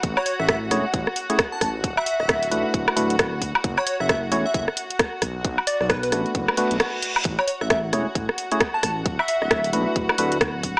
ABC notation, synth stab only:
X:1
M:4/4
L:1/16
Q:"Swing 16ths" 1/4=133
K:Amix
V:1 name="Synth stab"
z6 [A,CE^Gc] z4 [A,CEGc] z4 | z6 [A,DEFB]4 [A,DEFB]2 z4 | z6 [A,CEFc] z8 z | z6 [A,B,DFB]4 [A,B,DFB]2 z4 |
z6 [A,CE^Gc] z4 [A,CEGc] z4 | z6 [A,DEFB]4 [A,DEFB]2 z4 |]